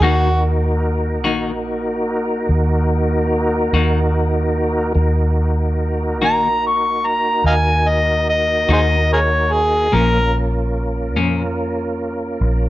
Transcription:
0.00 D#2 D#3 A#3 D#4 F#4 A#4
0.04 F#4
1.23 A#1 D#3 A#3 D#4 F#4
2.49 D#2
3.73 D#2 D#3 A#3 D#4 F#4
4.95 D#2 A#3 D#4 F#4 A#4
6.20 A#1 D#3 A#3 D#4 F#4
6.25 A#5
6.67 C#6
7.07 A#5
7.44 D#2 D#5 F5 G#5
7.89 D#5
8.29 D#5
8.69 D#2 D#3 A#3 D#4 F#4
8.73 G#4 C5 D#5
9.13 G#4 A#4 C#5
9.53 G#4
9.92 A#1 A#2 F3 A#3 C#4 F4 A#4
11.16 F2 A#2 F3 A#3 C#4
12.41 A#1

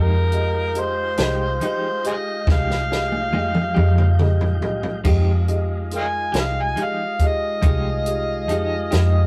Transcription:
Already playing: F2 F3 G#3 D#4 F4 G4 G#4 A#4 D#5 G5
0.32 G4 G#4 D#5, closed hi-hat
0.75 G4 G#4 D#5, closed hi-hat
0.80 C5
1.17 C2 G#3 D#4 G4 G#4 D#5, snare, closed hi-hat
1.61 F3 G#3 D#4 G4 G#4 D#5, closed hi-hat
1.66 C5
2.04 G4 G#4 C5 D#5, closed hi-hat
2.47 C2 F3 G#3 D#4 G4 G#4 D#5, kick, snare
2.52 F5
2.70 snare
2.90 G4 G#4 D#5, snare
3.12 high tom
3.33 F2 F3 G#3 D#4 G4 G#4 D#5, high tom
3.55 mid tom
3.74 F2 G#3 D#4 G4 G#4 D#5, mid tom
3.98 mid tom
4.19 G4 G#4 D#5, mid tom
4.41 floor tom
4.61 C2 G4 G#4 D#5, floor tom
4.83 floor tom
5.04 F2 F3 G#3 D#4 F4 G4 G#4 D#5, kick, crash
5.48 G4 G#4 D#5, closed hi-hat
5.91 F4 G#4 A#4, closed hi-hat
5.97 D#5 F5 G#5
6.32 C2 G#3 D#4 G4 G#4 D#5, snare, closed hi-hat
6.40 F5
6.62 G#5
6.76 F3 G#3 D#4 G4 G#4 D#5, closed hi-hat
6.83 F5
7.19 G4 G#4 D#5, kick, closed hi-hat
7.27 D#5
7.62 C2 F3 G#3 D#4 G4 G#4 D#5, kick, closed hi-hat
8.06 G4 G#4 D#5, closed hi-hat
8.48 F2 F3 G#3 D#4 G4 G#4 D#5, closed hi-hat
8.91 F2 G#3 D#4 G4 G#4 D#5, snare, closed hi-hat

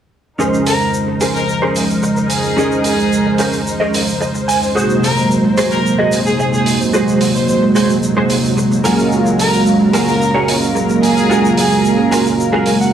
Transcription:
0.38 C#3 F3 G#3 C#4 D#4 G#4 A#4 C5, shaker
0.54 shaker
0.66 A#4, open hi-hat, shaker
0.81 shaker
0.94 shaker
1.07 muted clean electric guitar stroke
1.21 C#4 D#4 G#4 A#4 C5, open hi-hat, shaker
1.35 A#4, shaker
1.49 shaker
1.62 C#4 D#4 G#4 A#4 C5
1.76 open hi-hat, shaker
1.90 shaker
2.03 muted clean electric guitar stroke, shaker
2.17 muted clean electric guitar stroke, shaker
2.30 G#4, open hi-hat, shaker
2.44 shaker
2.57 C#4 D#4 G#4 A#4 D#5, shaker
2.72 shaker
2.84 G#4, open hi-hat, shaker
2.99 shaker
3.13 shaker
3.25 muted clean electric guitar stroke
3.38 C#4 D#4 G#4 A#4 C5, open hi-hat, shaker
3.53 shaker
3.67 shaker
3.80 C#4 D#4 G#4 A#4 D#5
3.94 open hi-hat, shaker
4.08 shaker
4.21 D#5, muted clean electric guitar stroke, shaker
4.34 muted clean electric guitar stroke, shaker
4.48 G#5, open hi-hat, shaker
4.63 shaker
4.75 C3 F#3 G#3 A#3 D#4 F#4 G#4 C5, shaker
4.90 shaker
5.03 A#4, open hi-hat, shaker
5.17 shaker
5.31 shaker
5.44 muted clean electric guitar stroke
5.58 F#4 G#4 C5, open hi-hat, shaker
5.71 A#4, shaker
5.86 shaker
5.99 F#4 G#4 D#5
6.12 open hi-hat, shaker
6.26 G#4, shaker
6.39 G#4, muted clean electric guitar stroke, shaker
6.53 G#4, muted clean electric guitar stroke, shaker
6.66 open hi-hat, shaker
6.81 shaker
6.93 F#4 G#4 C5, shaker
7.08 shaker
7.21 open hi-hat, shaker
7.35 C5, shaker
7.48 C5, shaker
7.62 muted clean electric guitar stroke
7.75 F#4 G#4 C5, open hi-hat, shaker
7.90 shaker
8.03 shaker
8.17 F#4 G#4 C5
8.30 open hi-hat, shaker
8.45 shaker
8.57 muted clean electric guitar stroke, shaker
8.71 muted clean electric guitar stroke, shaker
8.84 C#3 F#3 G#3 A#3 F4 F#4 G#4 A#4 F5, open hi-hat, shaker
8.99 shaker
9.12 shaker
9.26 shaker
9.39 A#4, open hi-hat, shaker
9.54 shaker
9.66 shaker
9.80 muted clean electric guitar stroke
9.93 F4 F#4 G#4 A#4, open hi-hat, shaker
10.07 A#4, shaker
10.22 shaker
10.34 F4 F#4 G#4 C#5
10.48 open hi-hat, shaker
10.63 shaker
10.75 muted clean electric guitar stroke, shaker
10.89 muted clean electric guitar stroke, shaker
11.03 G#4, open hi-hat, shaker
11.17 shaker
11.30 F4 F#4 G#4 A#4, shaker
11.45 shaker
11.57 G#4, open hi-hat, shaker
11.71 shaker
11.85 shaker
11.98 muted clean electric guitar stroke
12.11 F4 F#4 G#4 A#4, open hi-hat, shaker
12.26 shaker
12.40 shaker
12.53 F4 F#4 G#4 A#4
12.66 G#5, open hi-hat, shaker
12.80 F#5, shaker

